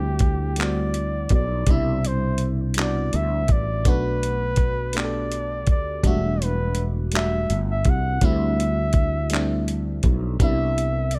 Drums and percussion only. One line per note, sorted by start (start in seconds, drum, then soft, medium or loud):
0.19 kick medium
0.19 closed hi-hat medium
0.56 closed hi-hat medium
0.61 clap loud
0.94 closed hi-hat soft
1.29 kick medium
1.29 closed hi-hat soft
1.67 kick loud
1.67 closed hi-hat medium
2.05 closed hi-hat medium
2.38 closed hi-hat medium
2.74 closed hi-hat medium
2.79 clap loud
3.13 closed hi-hat medium
3.48 kick loud
3.48 closed hi-hat soft
3.85 kick loud
3.85 closed hi-hat medium
4.23 closed hi-hat medium
4.56 kick medium
4.56 closed hi-hat medium
4.93 closed hi-hat medium
4.97 clap loud
5.32 closed hi-hat soft
5.67 kick medium
5.67 closed hi-hat soft
6.04 kick loud
6.04 closed hi-hat medium
6.42 closed hi-hat medium
6.75 closed hi-hat medium
7.12 closed hi-hat medium
7.16 clap loud
7.50 closed hi-hat soft
7.85 kick medium
7.85 closed hi-hat soft
8.21 kick loud
8.21 closed hi-hat medium
8.60 closed hi-hat medium
8.93 kick medium
8.93 closed hi-hat medium
9.30 closed hi-hat medium
9.34 clap loud
9.68 closed hi-hat medium
10.03 kick medium
10.03 closed hi-hat medium
10.40 kick loud
10.40 closed hi-hat medium
10.78 closed hi-hat medium
11.11 closed hi-hat medium